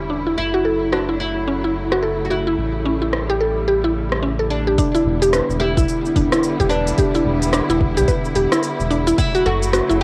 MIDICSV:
0, 0, Header, 1, 6, 480
1, 0, Start_track
1, 0, Tempo, 550459
1, 328, Time_signature, 4, 2, 24, 8
1, 8750, End_track
2, 0, Start_track
2, 0, Title_t, "Synth pluck"
2, 0, Program_c, 0, 84
2, 85, Note_on_c, 0, 62, 70
2, 223, Note_off_c, 0, 62, 0
2, 232, Note_on_c, 0, 64, 68
2, 328, Note_off_c, 0, 64, 0
2, 470, Note_on_c, 0, 66, 99
2, 562, Note_off_c, 0, 66, 0
2, 566, Note_on_c, 0, 69, 70
2, 797, Note_off_c, 0, 69, 0
2, 806, Note_on_c, 0, 66, 75
2, 944, Note_off_c, 0, 66, 0
2, 949, Note_on_c, 0, 64, 69
2, 1005, Note_off_c, 0, 64, 0
2, 1287, Note_on_c, 0, 61, 81
2, 1424, Note_off_c, 0, 61, 0
2, 1431, Note_on_c, 0, 64, 72
2, 1657, Note_off_c, 0, 64, 0
2, 1673, Note_on_c, 0, 66, 104
2, 1764, Note_off_c, 0, 66, 0
2, 1766, Note_on_c, 0, 69, 75
2, 1997, Note_off_c, 0, 69, 0
2, 2008, Note_on_c, 0, 66, 66
2, 2145, Note_off_c, 0, 66, 0
2, 2153, Note_on_c, 0, 64, 72
2, 2207, Note_off_c, 0, 64, 0
2, 2489, Note_on_c, 0, 61, 73
2, 2625, Note_off_c, 0, 61, 0
2, 2630, Note_on_c, 0, 64, 64
2, 2857, Note_off_c, 0, 64, 0
2, 2873, Note_on_c, 0, 67, 97
2, 2964, Note_off_c, 0, 67, 0
2, 2969, Note_on_c, 0, 69, 70
2, 3199, Note_off_c, 0, 69, 0
2, 3207, Note_on_c, 0, 67, 83
2, 3344, Note_off_c, 0, 67, 0
2, 3349, Note_on_c, 0, 64, 78
2, 3405, Note_off_c, 0, 64, 0
2, 3685, Note_on_c, 0, 61, 72
2, 3769, Note_off_c, 0, 61, 0
2, 3830, Note_on_c, 0, 69, 73
2, 3918, Note_off_c, 0, 69, 0
2, 4074, Note_on_c, 0, 67, 75
2, 4164, Note_off_c, 0, 67, 0
2, 4170, Note_on_c, 0, 62, 83
2, 4306, Note_off_c, 0, 62, 0
2, 4312, Note_on_c, 0, 64, 79
2, 4538, Note_off_c, 0, 64, 0
2, 4551, Note_on_c, 0, 67, 93
2, 4643, Note_off_c, 0, 67, 0
2, 4653, Note_on_c, 0, 71, 81
2, 4881, Note_off_c, 0, 71, 0
2, 4889, Note_on_c, 0, 67, 69
2, 5026, Note_off_c, 0, 67, 0
2, 5033, Note_on_c, 0, 64, 70
2, 5087, Note_off_c, 0, 64, 0
2, 5372, Note_on_c, 0, 62, 74
2, 5507, Note_off_c, 0, 62, 0
2, 5515, Note_on_c, 0, 64, 79
2, 5739, Note_off_c, 0, 64, 0
2, 5754, Note_on_c, 0, 67, 102
2, 5844, Note_off_c, 0, 67, 0
2, 5849, Note_on_c, 0, 71, 72
2, 6079, Note_off_c, 0, 71, 0
2, 6091, Note_on_c, 0, 67, 87
2, 6226, Note_off_c, 0, 67, 0
2, 6234, Note_on_c, 0, 64, 82
2, 6288, Note_off_c, 0, 64, 0
2, 6570, Note_on_c, 0, 62, 83
2, 6706, Note_off_c, 0, 62, 0
2, 6713, Note_on_c, 0, 64, 80
2, 6938, Note_off_c, 0, 64, 0
2, 6951, Note_on_c, 0, 67, 99
2, 7043, Note_off_c, 0, 67, 0
2, 7045, Note_on_c, 0, 71, 88
2, 7277, Note_off_c, 0, 71, 0
2, 7288, Note_on_c, 0, 67, 82
2, 7425, Note_off_c, 0, 67, 0
2, 7430, Note_on_c, 0, 64, 79
2, 7486, Note_off_c, 0, 64, 0
2, 7765, Note_on_c, 0, 62, 70
2, 7903, Note_off_c, 0, 62, 0
2, 7910, Note_on_c, 0, 64, 82
2, 8007, Note_off_c, 0, 64, 0
2, 8151, Note_on_c, 0, 66, 103
2, 8243, Note_off_c, 0, 66, 0
2, 8248, Note_on_c, 0, 69, 77
2, 8479, Note_off_c, 0, 69, 0
2, 8487, Note_on_c, 0, 66, 78
2, 8624, Note_off_c, 0, 66, 0
2, 8628, Note_on_c, 0, 64, 76
2, 8685, Note_off_c, 0, 64, 0
2, 8750, End_track
3, 0, Start_track
3, 0, Title_t, "Oud"
3, 0, Program_c, 1, 24
3, 329, Note_on_c, 1, 64, 106
3, 804, Note_off_c, 1, 64, 0
3, 808, Note_on_c, 1, 62, 88
3, 1043, Note_off_c, 1, 62, 0
3, 1046, Note_on_c, 1, 64, 104
3, 1957, Note_off_c, 1, 64, 0
3, 1961, Note_on_c, 1, 66, 65
3, 2008, Note_off_c, 1, 66, 0
3, 2011, Note_on_c, 1, 64, 88
3, 3895, Note_off_c, 1, 64, 0
3, 3927, Note_on_c, 1, 62, 93
3, 4877, Note_off_c, 1, 62, 0
3, 4881, Note_on_c, 1, 64, 112
3, 5836, Note_off_c, 1, 64, 0
3, 5839, Note_on_c, 1, 62, 92
3, 7249, Note_off_c, 1, 62, 0
3, 8007, Note_on_c, 1, 64, 100
3, 8231, Note_off_c, 1, 64, 0
3, 8247, Note_on_c, 1, 66, 105
3, 8723, Note_off_c, 1, 66, 0
3, 8750, End_track
4, 0, Start_track
4, 0, Title_t, "String section"
4, 0, Program_c, 2, 48
4, 0, Note_on_c, 2, 50, 67
4, 0, Note_on_c, 2, 55, 64
4, 0, Note_on_c, 2, 61, 62
4, 0, Note_on_c, 2, 64, 78
4, 294, Note_off_c, 2, 50, 0
4, 294, Note_off_c, 2, 55, 0
4, 311, Note_off_c, 2, 61, 0
4, 334, Note_on_c, 2, 49, 72
4, 334, Note_on_c, 2, 54, 68
4, 335, Note_on_c, 2, 57, 62
4, 2232, Note_off_c, 2, 54, 0
4, 2251, Note_on_c, 2, 55, 67
4, 4134, Note_off_c, 2, 64, 0
4, 4136, Note_off_c, 2, 49, 0
4, 4137, Note_off_c, 2, 57, 0
4, 4150, Note_off_c, 2, 55, 0
4, 4168, Note_on_c, 2, 55, 74
4, 4168, Note_on_c, 2, 64, 87
4, 4169, Note_on_c, 2, 50, 82
4, 4169, Note_on_c, 2, 59, 72
4, 7973, Note_off_c, 2, 55, 0
4, 7974, Note_off_c, 2, 50, 0
4, 7974, Note_off_c, 2, 59, 0
4, 8006, Note_on_c, 2, 49, 88
4, 8007, Note_on_c, 2, 54, 77
4, 8007, Note_on_c, 2, 57, 77
4, 8750, Note_off_c, 2, 49, 0
4, 8750, Note_off_c, 2, 54, 0
4, 8750, Note_off_c, 2, 57, 0
4, 8750, Note_off_c, 2, 64, 0
4, 8750, End_track
5, 0, Start_track
5, 0, Title_t, "Analog synth bass"
5, 0, Program_c, 3, 38
5, 0, Note_on_c, 3, 28, 81
5, 309, Note_off_c, 3, 28, 0
5, 332, Note_on_c, 3, 30, 82
5, 2231, Note_off_c, 3, 30, 0
5, 2247, Note_on_c, 3, 33, 82
5, 4148, Note_off_c, 3, 33, 0
5, 4408, Note_on_c, 3, 28, 109
5, 4714, Note_off_c, 3, 28, 0
5, 4789, Note_on_c, 3, 28, 81
5, 5033, Note_on_c, 3, 35, 83
5, 5046, Note_off_c, 3, 28, 0
5, 5096, Note_off_c, 3, 35, 0
5, 5370, Note_on_c, 3, 28, 102
5, 5464, Note_off_c, 3, 28, 0
5, 5752, Note_on_c, 3, 28, 92
5, 6036, Note_off_c, 3, 28, 0
5, 6324, Note_on_c, 3, 28, 109
5, 6632, Note_off_c, 3, 28, 0
5, 6708, Note_on_c, 3, 28, 87
5, 6951, Note_on_c, 3, 35, 81
5, 6964, Note_off_c, 3, 28, 0
5, 7015, Note_off_c, 3, 35, 0
5, 7287, Note_on_c, 3, 28, 95
5, 7382, Note_off_c, 3, 28, 0
5, 7672, Note_on_c, 3, 28, 90
5, 7956, Note_off_c, 3, 28, 0
5, 8250, Note_on_c, 3, 30, 108
5, 8554, Note_off_c, 3, 30, 0
5, 8632, Note_on_c, 3, 30, 81
5, 8750, Note_off_c, 3, 30, 0
5, 8750, End_track
6, 0, Start_track
6, 0, Title_t, "Drums"
6, 809, Note_on_c, 9, 37, 70
6, 897, Note_off_c, 9, 37, 0
6, 1672, Note_on_c, 9, 37, 63
6, 1759, Note_off_c, 9, 37, 0
6, 2728, Note_on_c, 9, 37, 66
6, 2816, Note_off_c, 9, 37, 0
6, 3592, Note_on_c, 9, 37, 68
6, 3679, Note_off_c, 9, 37, 0
6, 4168, Note_on_c, 9, 46, 62
6, 4169, Note_on_c, 9, 36, 116
6, 4174, Note_on_c, 9, 82, 55
6, 4256, Note_off_c, 9, 46, 0
6, 4257, Note_off_c, 9, 36, 0
6, 4261, Note_off_c, 9, 82, 0
6, 4312, Note_on_c, 9, 46, 30
6, 4318, Note_on_c, 9, 82, 34
6, 4399, Note_off_c, 9, 46, 0
6, 4405, Note_off_c, 9, 82, 0
6, 4551, Note_on_c, 9, 46, 41
6, 4557, Note_on_c, 9, 82, 62
6, 4639, Note_off_c, 9, 46, 0
6, 4644, Note_off_c, 9, 82, 0
6, 4647, Note_on_c, 9, 37, 78
6, 4647, Note_on_c, 9, 46, 55
6, 4653, Note_on_c, 9, 82, 52
6, 4734, Note_off_c, 9, 37, 0
6, 4734, Note_off_c, 9, 46, 0
6, 4740, Note_off_c, 9, 82, 0
6, 4798, Note_on_c, 9, 82, 32
6, 4885, Note_off_c, 9, 82, 0
6, 5033, Note_on_c, 9, 36, 104
6, 5034, Note_on_c, 9, 46, 45
6, 5039, Note_on_c, 9, 82, 68
6, 5120, Note_off_c, 9, 36, 0
6, 5121, Note_off_c, 9, 46, 0
6, 5126, Note_off_c, 9, 82, 0
6, 5130, Note_on_c, 9, 46, 53
6, 5135, Note_on_c, 9, 82, 55
6, 5217, Note_off_c, 9, 46, 0
6, 5222, Note_off_c, 9, 82, 0
6, 5280, Note_on_c, 9, 82, 36
6, 5368, Note_off_c, 9, 82, 0
6, 5369, Note_on_c, 9, 36, 107
6, 5370, Note_on_c, 9, 46, 54
6, 5457, Note_off_c, 9, 36, 0
6, 5457, Note_off_c, 9, 46, 0
6, 5513, Note_on_c, 9, 37, 80
6, 5513, Note_on_c, 9, 46, 46
6, 5518, Note_on_c, 9, 82, 65
6, 5600, Note_off_c, 9, 37, 0
6, 5600, Note_off_c, 9, 46, 0
6, 5605, Note_off_c, 9, 82, 0
6, 5608, Note_on_c, 9, 46, 58
6, 5614, Note_on_c, 9, 82, 57
6, 5695, Note_off_c, 9, 46, 0
6, 5701, Note_off_c, 9, 82, 0
6, 5753, Note_on_c, 9, 36, 57
6, 5759, Note_on_c, 9, 82, 35
6, 5840, Note_off_c, 9, 36, 0
6, 5846, Note_off_c, 9, 82, 0
6, 5846, Note_on_c, 9, 46, 35
6, 5933, Note_off_c, 9, 46, 0
6, 5991, Note_on_c, 9, 46, 46
6, 5996, Note_on_c, 9, 82, 67
6, 6078, Note_off_c, 9, 46, 0
6, 6084, Note_off_c, 9, 82, 0
6, 6085, Note_on_c, 9, 46, 57
6, 6089, Note_on_c, 9, 36, 127
6, 6090, Note_on_c, 9, 82, 58
6, 6172, Note_off_c, 9, 46, 0
6, 6176, Note_off_c, 9, 36, 0
6, 6178, Note_off_c, 9, 82, 0
6, 6230, Note_on_c, 9, 46, 33
6, 6236, Note_on_c, 9, 82, 34
6, 6317, Note_off_c, 9, 46, 0
6, 6323, Note_off_c, 9, 82, 0
6, 6470, Note_on_c, 9, 46, 46
6, 6476, Note_on_c, 9, 82, 67
6, 6557, Note_off_c, 9, 46, 0
6, 6563, Note_off_c, 9, 82, 0
6, 6565, Note_on_c, 9, 37, 79
6, 6565, Note_on_c, 9, 46, 56
6, 6570, Note_on_c, 9, 82, 57
6, 6652, Note_off_c, 9, 37, 0
6, 6652, Note_off_c, 9, 46, 0
6, 6657, Note_off_c, 9, 82, 0
6, 6714, Note_on_c, 9, 82, 37
6, 6801, Note_off_c, 9, 82, 0
6, 6808, Note_on_c, 9, 36, 112
6, 6896, Note_off_c, 9, 36, 0
6, 6951, Note_on_c, 9, 46, 47
6, 6956, Note_on_c, 9, 82, 72
6, 7038, Note_off_c, 9, 46, 0
6, 7044, Note_off_c, 9, 82, 0
6, 7046, Note_on_c, 9, 46, 57
6, 7049, Note_on_c, 9, 36, 115
6, 7052, Note_on_c, 9, 82, 54
6, 7134, Note_off_c, 9, 46, 0
6, 7136, Note_off_c, 9, 36, 0
6, 7139, Note_off_c, 9, 82, 0
6, 7195, Note_on_c, 9, 82, 34
6, 7282, Note_off_c, 9, 82, 0
6, 7285, Note_on_c, 9, 46, 53
6, 7372, Note_off_c, 9, 46, 0
6, 7430, Note_on_c, 9, 37, 83
6, 7430, Note_on_c, 9, 46, 46
6, 7436, Note_on_c, 9, 82, 69
6, 7517, Note_off_c, 9, 37, 0
6, 7517, Note_off_c, 9, 46, 0
6, 7523, Note_off_c, 9, 82, 0
6, 7524, Note_on_c, 9, 46, 53
6, 7530, Note_on_c, 9, 82, 55
6, 7611, Note_off_c, 9, 46, 0
6, 7617, Note_off_c, 9, 82, 0
6, 7675, Note_on_c, 9, 82, 34
6, 7762, Note_off_c, 9, 82, 0
6, 7766, Note_on_c, 9, 46, 34
6, 7854, Note_off_c, 9, 46, 0
6, 7909, Note_on_c, 9, 46, 44
6, 7915, Note_on_c, 9, 82, 64
6, 7996, Note_off_c, 9, 46, 0
6, 8002, Note_off_c, 9, 82, 0
6, 8006, Note_on_c, 9, 46, 52
6, 8008, Note_on_c, 9, 36, 124
6, 8012, Note_on_c, 9, 82, 60
6, 8093, Note_off_c, 9, 46, 0
6, 8095, Note_off_c, 9, 36, 0
6, 8099, Note_off_c, 9, 82, 0
6, 8150, Note_on_c, 9, 46, 29
6, 8156, Note_on_c, 9, 82, 35
6, 8237, Note_off_c, 9, 46, 0
6, 8243, Note_off_c, 9, 82, 0
6, 8392, Note_on_c, 9, 46, 42
6, 8397, Note_on_c, 9, 82, 67
6, 8479, Note_off_c, 9, 46, 0
6, 8484, Note_off_c, 9, 82, 0
6, 8487, Note_on_c, 9, 37, 77
6, 8487, Note_on_c, 9, 46, 51
6, 8493, Note_on_c, 9, 82, 57
6, 8575, Note_off_c, 9, 37, 0
6, 8575, Note_off_c, 9, 46, 0
6, 8580, Note_off_c, 9, 82, 0
6, 8636, Note_on_c, 9, 82, 35
6, 8724, Note_off_c, 9, 82, 0
6, 8750, End_track
0, 0, End_of_file